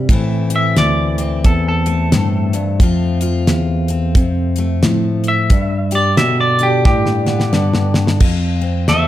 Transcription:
Already playing: C4
0.09 A2 E3 A3 C4 E4, kick, closed hi-hat
0.50 E4, closed hi-hat
0.56 E5
0.76 D2 E3 D5, snare, closed hi-hat
1.18 C4, closed hi-hat
1.44 E2 A4, kick, closed hi-hat
1.68 A4
1.86 A3, closed hi-hat
2.12 G2 A2, snare, closed hi-hat
2.53 G2, closed hi-hat
2.80 F2 F3 A3 C4 F4, kick, closed hi-hat
3.21 F4, closed hi-hat
3.47 E2, snare, closed hi-hat
3.88 C4, closed hi-hat
4.15 F2 C3, kick, closed hi-hat
4.56 A3, closed hi-hat
4.83 A2 F3, snare, closed hi-hat
5.24 closed hi-hat
5.28 E5
5.50 G2, kick, closed hi-hat
5.91 G4, closed hi-hat
5.95 D5
6.17 B2 D3 E5, snare, closed hi-hat
6.41 D5
6.59 D4, closed hi-hat
6.63 G4
6.85 G2 A2 G4, kick, snare
7.06 snare
7.26 B3, snare
7.40 snare
7.53 G2 D3, snare
7.74 snare
7.94 snare
8.07 snare
8.20 F2 F4, kick, crash
8.61 C4
8.88 E2 A3 A4 E5, snare, closed hi-hat

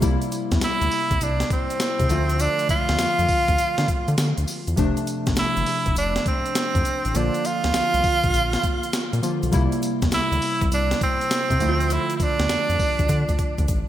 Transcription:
0.01 C2 C3 G3 A#3 E4, kick, closed hi-hat, tambourine, shaker
0.22 closed hi-hat, shaker
0.32 closed hi-hat, tambourine, shaker
0.51 E2, kick, snare, closed hi-hat, shaker
0.61 D2 E4, snare, closed hi-hat, tambourine, shaker
0.81 D2, closed hi-hat, shaker
0.91 open hi-hat, tambourine
1.11 C2, kick, closed hi-hat, shaker
1.21 C2 D4, closed hi-hat, tambourine, shaker
1.40 snare, closed hi-hat, shaker
1.50 C4, kick, closed hi-hat, shaker
1.70 closed hi-hat, shaker
1.80 snare, closed hi-hat, tambourine, shaker
2.00 C3, kick, closed hi-hat, shaker
2.09 D2 D3 F3 A3 F4, closed hi-hat, tambourine, shaker
2.29 closed hi-hat, shaker
2.39 D4, closed hi-hat, tambourine, shaker
2.59 closed hi-hat, shaker
2.69 F4, kick, closed hi-hat, tambourine, shaker
2.89 D2, snare, closed hi-hat, shaker
2.99 F2, snare, closed hi-hat, tambourine, shaker
3.19 F2, closed hi-hat, shaker
3.29 kick, open hi-hat, tambourine
3.48 D2, kick, closed hi-hat, shaker
3.58 closed hi-hat, tambourine, shaker
3.78 D3, snare, closed hi-hat, shaker
3.88 kick, closed hi-hat, shaker
4.08 D3, closed hi-hat, shaker
4.18 D3, snare, closed hi-hat, tambourine, shaker
4.38 D2, closed hi-hat, shaker
4.48 open hi-hat, tambourine, shaker
4.67 E2, closed hi-hat, shaker
4.76 F1 C3 F3 A3 D4, kick, closed hi-hat, tambourine, shaker
4.97 closed hi-hat, shaker
5.07 closed hi-hat, tambourine, shaker
5.26 A1, kick, snare, closed hi-hat, shaker
5.36 G1 E4, snare, closed hi-hat, tambourine, shaker
5.56 G1, closed hi-hat, shaker
5.66 open hi-hat, tambourine
5.86 F1, kick, closed hi-hat, shaker
5.96 F1 D4, closed hi-hat, tambourine, shaker
6.16 snare, closed hi-hat, shaker
6.26 C4, kick, closed hi-hat, shaker
6.45 closed hi-hat, shaker
6.55 snare, closed hi-hat, tambourine, shaker
6.75 F2, kick, closed hi-hat, shaker
6.85 closed hi-hat, tambourine, shaker
7.05 A1, closed hi-hat, shaker
7.14 A#1 D3 F3 A#3 D4 F4, closed hi-hat, tambourine, shaker
7.34 closed hi-hat, shaker
7.45 F4, closed hi-hat, tambourine, shaker
7.64 D2, snare, closed hi-hat, shaker
7.74 C2, snare, closed hi-hat, tambourine, shaker
7.94 C2, closed hi-hat, shaker
8.04 kick, open hi-hat, tambourine
8.23 A#1, kick, closed hi-hat, shaker
8.34 A#1, closed hi-hat, tambourine, shaker
8.53 snare, closed hi-hat, shaker
8.63 kick, closed hi-hat, shaker
8.83 closed hi-hat, shaker
8.93 snare, closed hi-hat, tambourine, shaker
9.13 A#2, closed hi-hat, shaker
9.22 D3 F3 A#3 F4, closed hi-hat, tambourine, shaker
9.43 B1, closed hi-hat, shaker
9.51 C2 C3 G3 A#3 E4, kick, closed hi-hat, tambourine, shaker
9.72 closed hi-hat, shaker
9.82 closed hi-hat, tambourine, shaker
10.02 E2, kick, snare, closed hi-hat, shaker
10.12 D2 E4, snare, closed hi-hat, tambourine, shaker
10.32 D2, closed hi-hat, shaker
10.42 open hi-hat, tambourine
10.61 C2, kick, closed hi-hat, shaker
10.71 C2 D4, closed hi-hat, tambourine, shaker
10.91 snare, closed hi-hat, shaker
11.01 C4, kick, closed hi-hat, shaker
11.21 closed hi-hat, shaker
11.31 snare, closed hi-hat, tambourine, shaker
11.50 C3, kick, closed hi-hat, shaker
11.60 D2 D3 F3 A3 E4, closed hi-hat, tambourine, shaker
11.69 F4
11.80 closed hi-hat, shaker
11.90 E4, closed hi-hat, tambourine, shaker
12.10 closed hi-hat, shaker
12.17 E4, kick, closed hi-hat, tambourine, shaker
12.23 D4
12.39 D2, snare, closed hi-hat, shaker
12.49 F2, snare, closed hi-hat, tambourine, shaker
12.69 F2, closed hi-hat, shaker
12.79 kick, open hi-hat, tambourine
12.99 D2, kick, closed hi-hat, shaker
13.09 D3, kick, closed hi-hat, shaker
13.28 D2, kick, closed hi-hat, shaker
13.39 kick, closed hi-hat, shaker
13.58 D2, kick, closed hi-hat, shaker
13.68 A1, kick, closed hi-hat, shaker

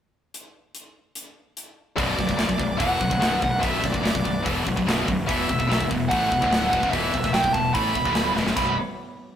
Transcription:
0.34 closed hi-hat
0.75 closed hi-hat
1.15 closed hi-hat
1.57 closed hi-hat
1.96 B0 B1 F#2 B2 B3 F#4 B4 D5, kick, open hi-hat
2.16 B0 B1 F#2, kick, snare
2.27 B0 B1 F#2, kick, snare
2.36 F#1 F#2 C#3, snare, open hi-hat
2.48 B0 B1 F#2, kick
2.58 B0 B1 F#2, kick
2.77 E1 E2 B2 E3 F#5, kick, open hi-hat
2.99 B0 B1 F#2, kick
3.10 B0 B1 F#2, kick
3.19 B0 B1 F#2 B2, snare, open hi-hat
3.41 B0 B1 F#2 F#5, kick
3.59 B0 B1 F#2 B2 E5
3.63 kick, open hi-hat
3.80 B1 F#2, kick
3.84 B0 D5, snare
3.92 B0 B1 F#2, kick
4.02 F#1 F#2 C#3, snare, open hi-hat
4.12 B0 B1 F#2, kick
4.24 B0 B1 F#2, kick
4.43 E1 E2 B2 E3, kick, open hi-hat
4.65 B0 B1 F#2, kick
4.76 B0 B1 F#2, kick
4.86 B0 B1 F#2 B2, snare, open hi-hat
5.07 B0 B1 F#2, kick
5.26 E1 E2 B2 E3 F#4 E5, kick, open hi-hat
5.48 E1 E2 B2, kick
5.59 E1 E2 B2, kick
5.67 B1 B2 F#3
5.71 snare, open hi-hat
5.78 E1 E2 B2, kick
5.89 E1 E2 B2, kick
6.09 A1 A2 E3 A3 F#5, kick, open hi-hat
6.30 E1 E2 B2, kick
6.41 D1 D2 A2 D3, kick
6.52 snare, open hi-hat
6.70 E1 E2 B2 F#5, kick
6.82 F#1 F#2 C#3, kick
6.90 E1 E2 B2 E3 E5, kick, open hi-hat
7.13 E1 E2 B2, kick
7.24 E1 E2 B2, kick, snare
7.33 B1 B2 F#3 G5, snare, open hi-hat
7.44 E1 E2 B2, kick
7.53 E1 E2 B2 A5, kick
7.73 A1 A2 E3 A3 B5, kick, open hi-hat
7.94 E1 E2 B2, kick
8.05 D1 D2 A2 D3, kick
8.15 snare, open hi-hat
8.35 E1 E2 B2, snare
8.44 F#1 F#2 C#3, snare
8.53 B0 B1 F#2 B2 B3 F#4 C#5 D5 B5, kick, crash

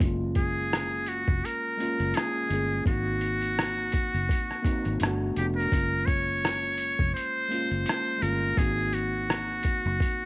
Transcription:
0.00 F#1 G#3 A#3 C#4, kick, closed hi-hat
0.05 F4
0.35 G#4, kick, closed hi-hat
0.73 cross-stick, closed hi-hat
1.06 F#4, closed hi-hat
1.28 F1, kick
1.45 A#4, closed hi-hat
1.77 G#3 A#3 C#4, closed hi-hat
1.82 F4
2.00 F#1, closed hi-hat
2.14 G#4, cross-stick, closed hi-hat
2.49 G1 G#3 A#3 C#4, closed hi-hat
2.54 G#4
2.85 G#1 A#3 C4 D#4 F#4, kick, closed hi-hat
2.90 F#4
3.21 closed hi-hat
3.42 closed hi-hat
3.59 cross-stick, closed hi-hat
3.92 kick, closed hi-hat
4.14 F#1, closed hi-hat
4.29 kick, closed hi-hat
4.51 cross-stick
4.62 A#3 C4 D#4, kick, closed hi-hat
4.67 F#4
4.85 G#1, closed hi-hat
5.00 G1 A3 B3, cross-stick, closed hi-hat
5.04 D4 F#4
5.36 F1 A3 B3 D4 G4, closed hi-hat
5.41 F#4
5.56 A#4
5.60 closed hi-hat
5.70 F#1 G#3 A#3 C#4, kick, closed hi-hat
5.75 F4
6.06 C#5, kick, closed hi-hat
6.45 cross-stick, closed hi-hat
6.78 closed hi-hat
6.99 F1, kick
7.15 C5, closed hi-hat
7.49 G#3 A#3 C#4, closed hi-hat
7.54 F4
7.71 F#1, closed hi-hat
7.86 cross-stick, closed hi-hat
8.18 G#3 A#3 C#4
8.22 G1 F4 A#4, closed hi-hat
8.56 G#1 A#3 C4 D#4 G#4, kick, closed hi-hat
8.61 F#4
8.93 F#4, closed hi-hat
9.30 cross-stick, closed hi-hat
9.63 kick, closed hi-hat
9.86 F#1
10.00 kick, closed hi-hat

